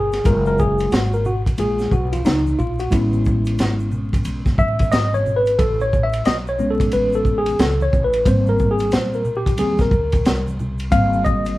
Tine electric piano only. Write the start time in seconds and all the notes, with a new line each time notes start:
Already playing: G#4
0.24 G#3 A#3 F4 A#4
0.47 A#4
0.59 G#4
0.92 F#4
1.14 A#4
1.26 F#4
1.58 G#3 A#3 F4 G#4
1.92 F#4
2.13 F4
2.25 D#4
2.59 F4
2.80 F#4
2.90 G#3 B3 C#4 E4
4.59 E5
4.92 D#5
5.14 C#5
5.36 B4
5.59 A4
5.81 C#5
6.03 E5
6.26 D#5
6.49 C#5
6.59 G#3 B3 C#4
6.71 A4
6.93 B4
7.15 A4
7.38 G#4
7.60 A4
7.82 C#5
8.04 B4
8.26 G3 A#3 C4 C5
8.49 A#4
8.71 G#4
8.93 C5
9.15 A#4
9.37 G4
9.58 G3 A#3 C4 G#4
9.81 A#4
10.91 G3 A#3 C4 F5
11.25 D#5